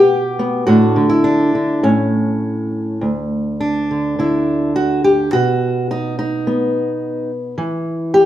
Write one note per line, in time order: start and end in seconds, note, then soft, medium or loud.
0.00 0.64 B2 medium
0.00 0.38 B3 soft
0.00 0.66 G4 loud
0.39 0.64 B3 medium
0.67 0.96 A2 medium
0.67 0.95 D3 medium
0.67 1.23 D4 medium
0.67 1.09 F#4 loud
0.96 1.54 D3 medium
1.10 1.83 E4 medium
1.24 1.83 D4 medium
1.55 1.83 D3 soft
1.83 3.03 A2 medium
1.83 3.03 C#4 medium
3.01 5.33 D2 medium
3.61 4.77 D4 medium
3.91 4.18 D3 soft
4.19 5.33 D3 medium
4.19 4.75 E4 medium
4.76 5.04 F#4 medium
5.04 5.33 G4 medium
5.33 7.54 B2 medium
5.33 5.89 F#4 medium
5.91 6.17 D#4 medium
6.19 7.30 D#4 medium
6.47 7.55 B3 medium
7.58 8.26 E3 medium
8.14 8.26 G4 medium